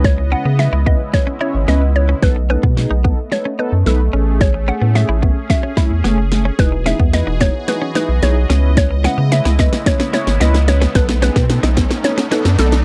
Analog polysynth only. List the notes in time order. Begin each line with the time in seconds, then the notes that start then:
Already playing: C#4 E4 B4
0.31 C#4 E4 B4
0.59 C#4 E4 B4
0.86 C#4 E4 B4
1.13 C#4 E4 B4
1.41 C#4 E4 C#5
1.68 C#4 E4 B4
1.95 C#4 E4 B4
2.22 B3 D#4 A4
2.50 B3 D#4 A4
2.77 B3 D#4 G#4
3.04 B3 D#4 A4
3.31 B3 D#4 A4
3.58 B3 D#4 A4
3.86 B3 D#4 B4
4.13 A3 C#4 G#4
4.68 A3 C#4 G#4
4.95 A3 C#4 G#4
5.22 A3 C#4 G#4
5.49 A3 C#4 F#4
5.77 A3 C#4 E4
6.04 A3 C#4 G#4
6.31 A3 C#4 G#4
6.58 D#4 E4 G#4
6.86 D#4 E4 G#4
7.13 D#4 E4 B4
7.40 D#4 E4 G#4
7.67 D#4 E4 G#4
7.95 D#4 E4 G#4
8.22 D#4 E4 G#4
8.49 C#4 E4 B4
9.04 C#4 E4 B4
9.31 C#4 E4 B4
9.59 C#4 E4 B4
9.86 C#4 E4 B4
10.13 C#4 E4 C#5
10.40 C#4 E4 B4
10.68 C#4 E4 B4
10.95 B3 D#4 A4
11.22 B3 D#4 G#4
11.49 B3 D#4 A4
11.77 B3 D#4 A4
12.04 B3 D#4 A4
12.31 B3 D#4 A4
12.58 B3 D#4 A4